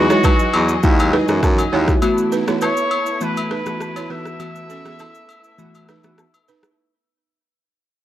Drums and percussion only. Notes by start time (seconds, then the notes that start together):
0.10 cross-stick, shaker
0.24 kick, high agogo, low woodblock, shaker
0.39 shaker
0.54 high agogo
0.69 shaker
0.83 kick, shaker
0.99 high agogo, shaker
1.14 cross-stick
1.28 cross-stick, shaker
1.43 kick, cross-stick, low woodblock, shaker
1.59 high agogo, shaker
1.88 kick, cross-stick, shaker
2.02 high agogo, shaker
2.18 shaker
2.32 shaker
2.48 cross-stick, shaker
2.61 high agogo, low woodblock, shaker
2.77 shaker
2.91 high agogo
3.06 shaker
3.21 shaker
3.37 high agogo, shaker
3.51 cross-stick
3.66 cross-stick, shaker
3.80 cross-stick, low woodblock, shaker
3.96 high agogo, shaker
4.25 cross-stick, shaker
4.40 high agogo, shaker
4.55 shaker
4.70 shaker
4.86 cross-stick, shaker
4.99 high agogo, low woodblock, shaker
5.15 shaker
5.29 high agogo, shaker
5.44 shaker
5.59 shaker
5.75 high agogo, shaker
5.89 cross-stick, shaker
6.04 cross-stick, shaker
6.18 cross-stick, low woodblock, shaker
6.34 high agogo, shaker
6.48 shaker
6.63 cross-stick, shaker